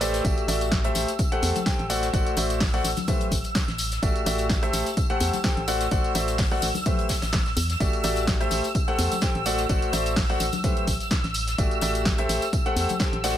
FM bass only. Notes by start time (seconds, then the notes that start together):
Already playing: A1
0.25 A1
0.48 A1
0.95 A1
1.43 E2
1.79 A1
2.13 A1
2.37 A1
2.84 A1
3.32 A1
3.68 A1
4.03 A1
4.26 A1
4.73 A1
5.21 E2
5.57 A1
5.91 A1
6.15 A1
6.62 A1
7.22 A1
7.57 E2
7.80 A1
8.04 A1
8.51 A1
8.99 E2
9.35 A1
9.69 A1
9.93 A1
10.40 A1
10.88 A1
11.24 A1
11.58 A1
11.82 A1
12.29 A1
12.76 E2
13.13 A1